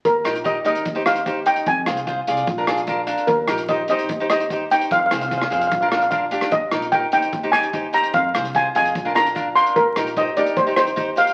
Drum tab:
HH |x-xxx-xxx-xxx-xx|x-xxx-xxx-xxx-xx|x-xxx-xxx-xxx-xx|x-xxx-xxx-xxx-xx|
SD |--r-------r-----|--r-------r-----|--r-------r-----|--r--r----r----r|
BD |o---o---o---o---|o---o---o---o---|o---o---o---o---|o---o---o---o---|

HH |x-xxx-xxx-xxx-xx|x-xxx-xxx-xxx-xx|x-xxx-xxx-xxx-xx|
SD |--r-------r-----|--r-------r-----|--r-------r-----|
BD |o---o---o---o---|o---o---o---o---|o---o---o---o---|